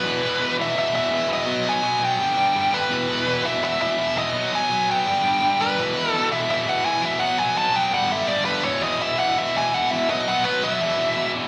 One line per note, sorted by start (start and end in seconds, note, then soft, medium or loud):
0.00 0.21 E2 loud
0.00 0.22 B2 loud
0.00 0.56 B4 medium
0.04 0.21 E3 loud
0.22 0.39 E2 medium
0.22 0.39 B2 medium
0.22 0.40 E3 medium
0.40 0.57 E2 loud
0.40 0.58 B2 loud
0.40 0.58 E3 loud
0.58 0.74 E2 medium
0.58 0.74 B2 medium
0.58 0.75 E3 loud
0.58 0.78 E5 medium
0.75 0.92 E2 loud
0.75 0.93 B2 loud
0.75 0.93 E3 loud
0.75 0.94 E5 medium
0.94 1.10 E2 medium
0.94 1.10 B2 medium
0.94 1.11 E3 loud
0.94 1.28 E5 medium
1.11 1.27 E2 loud
1.11 1.27 B2 loud
1.11 1.27 E3 loud
1.28 1.46 E2 medium
1.28 1.45 B2 medium
1.28 1.46 E3 loud
1.33 1.68 D#5 medium
1.47 1.64 B2 loud
1.47 1.65 F#3 loud
1.47 1.66 B3 loud
1.66 1.82 B2 medium
1.66 1.82 F#3 medium
1.66 1.83 B3 loud
1.66 2.00 G#5 medium
1.83 1.99 B2 medium
1.83 1.99 F#3 loud
1.83 2.01 B3 loud
2.00 2.17 B2 medium
2.00 2.18 F#3 loud
2.00 4.34 B3 medium
2.04 2.77 G5 loud
2.18 2.35 G2 medium
2.18 2.35 D3 loud
2.18 2.36 G3 loud
2.36 2.53 G2 medium
2.36 2.54 D3 medium
2.36 2.55 G3 medium
2.55 2.71 G2 medium
2.55 2.71 D3 loud
2.55 2.71 G3 loud
2.72 2.89 G2 medium
2.72 2.89 D3 loud
2.72 2.90 G3 medium
2.72 3.47 B4 loud
2.90 3.08 E2 loud
2.90 3.08 B2 loud
2.90 3.08 E3 loud
3.09 3.25 E2 medium
3.09 3.25 B2 medium
3.09 3.25 E3 loud
3.26 3.43 E2 medium
3.26 3.43 B2 loud
3.26 3.43 E3 loud
3.44 3.61 E2 medium
3.44 3.61 B2 medium
3.44 3.62 E3 loud
3.44 3.63 E5 medium
3.62 3.80 E2 loud
3.62 3.79 B2 loud
3.62 3.80 E3 loud
3.62 3.80 E5 loud
3.81 3.96 E2 medium
3.81 3.97 B2 loud
3.81 3.97 E3 medium
3.81 4.18 E5 loud
3.98 4.14 E2 medium
3.98 4.15 B2 loud
3.98 4.15 E3 loud
4.15 4.32 E2 medium
4.15 4.32 B2 loud
4.15 4.33 E3 loud
4.15 4.54 D#5 loud
4.33 4.51 B2 loud
4.33 4.52 F#3 loud
4.33 4.53 B3 loud
4.52 4.69 B2 medium
4.52 4.69 F#3 loud
4.52 4.71 B3 loud
4.52 4.87 G#5 loud
4.70 4.87 B2 medium
4.70 4.88 F#3 loud
4.70 4.89 B3 loud
4.88 5.05 B2 medium
4.88 5.06 F#3 medium
4.88 7.20 B3 loud
4.88 5.63 G5 loud
5.06 5.23 G2 loud
5.06 5.24 D3 loud
5.06 5.23 G3 loud
5.24 5.40 G2 medium
5.24 5.40 D3 loud
5.24 5.41 G3 medium
5.41 5.58 G2 medium
5.41 5.58 D3 loud
5.41 5.59 G3 loud
5.59 5.76 G2 medium
5.59 5.76 D3 loud
5.59 5.77 G3 loud
5.59 6.11 B4 loud
5.78 5.93 E2 loud
5.78 5.94 B2 loud
5.78 5.95 E3 loud
5.95 6.12 E2 medium
5.95 6.13 B2 medium
5.95 6.13 E3 medium
6.11 6.29 E2 medium
6.11 6.30 B2 loud
6.11 6.30 E3 loud
6.11 6.28 A4 loud
6.30 6.48 E2 loud
6.30 6.47 B2 medium
6.30 6.48 E3 medium
6.30 6.50 E5 medium
6.49 6.64 E2 loud
6.49 6.65 B2 loud
6.49 6.65 E3 loud
6.49 6.67 E5 loud
6.66 6.84 E2 medium
6.66 6.84 B2 medium
6.66 6.84 E3 loud
6.66 6.85 F#5 loud
6.85 7.01 E2 medium
6.85 7.01 B2 loud
6.85 7.01 E3 loud
6.85 7.04 G#5 loud
7.02 7.19 E2 medium
7.02 7.18 B2 medium
7.02 7.19 E3 loud
7.02 7.19 E5 loud
7.19 7.37 B2 loud
7.19 7.38 F#3 loud
7.19 7.38 B3 loud
7.19 7.38 F#5 loud
7.38 7.54 B2 medium
7.38 7.54 F#3 medium
7.38 7.56 B3 medium
7.38 7.57 G#5 loud
7.55 7.71 B2 loud
7.55 7.72 F#3 loud
7.55 7.73 B3 loud
7.55 7.76 A5 loud
7.72 7.90 B2 medium
7.72 7.91 F#3 medium
7.72 10.09 B3 loud
7.72 7.94 G5 loud
7.92 8.09 G2 loud
7.92 8.09 D3 loud
7.92 8.09 G3 loud
7.92 8.12 F#5 loud
8.10 8.27 G2 medium
8.10 8.27 D3 loud
8.10 8.28 G3 loud
8.10 8.30 E5 medium
8.28 8.46 G2 medium
8.28 8.46 D3 loud
8.28 8.47 G3 loud
8.28 8.45 D5 loud
8.45 8.63 G2 loud
8.45 8.64 D3 loud
8.45 8.64 G3 loud
8.45 8.63 B4 loud
8.64 8.80 E2 loud
8.64 8.80 B2 loud
8.64 8.80 E3 loud
8.64 8.83 C#5 loud
8.81 8.97 E2 medium
8.81 8.98 B2 medium
8.81 8.98 E3 medium
8.81 9.01 D#5 medium
8.99 9.16 E2 loud
8.99 9.16 B2 loud
8.99 9.17 E3 loud
8.99 9.19 E5 loud
9.18 9.35 E2 medium
9.18 9.36 B2 medium
9.18 9.36 E3 loud
9.18 9.38 F#5 loud
9.37 9.54 E2 loud
9.37 9.54 B2 loud
9.37 9.55 E3 loud
9.37 9.56 E5 loud
9.55 9.73 E2 medium
9.55 9.73 B2 medium
9.55 9.73 E3 medium
9.55 9.74 G#5 loud
9.74 9.90 E2 loud
9.74 9.90 B2 loud
9.74 9.91 E3 loud
9.74 9.91 F#5 loud
9.91 10.08 E2 loud
9.91 10.08 B2 loud
9.91 10.08 E3 medium
9.91 10.09 E5 loud
10.09 10.27 B2 loud
10.09 10.27 F#3 loud
10.09 10.28 B3 loud
10.09 10.27 D#5 loud
10.28 10.44 B2 medium
10.28 10.43 F#3 medium
10.28 10.44 B3 loud
10.28 10.44 F#5 medium
10.44 10.61 B2 loud
10.44 10.62 F#3 loud
10.44 10.62 B3 loud
10.44 10.63 B4 loud
10.62 10.79 B2 medium
10.62 10.79 F#3 loud
10.62 10.80 B3 medium
10.62 11.31 E5 medium
10.81 10.97 E2 loud
10.81 10.98 B2 loud
10.81 10.98 E3 loud
10.98 11.16 E2 medium
10.98 11.16 B2 medium
10.98 11.16 E3 medium
11.17 11.34 E2 loud
11.17 11.34 B2 loud
11.17 11.34 E3 loud
11.35 11.48 E2 medium
11.35 11.48 B2 loud
11.35 11.48 E3 loud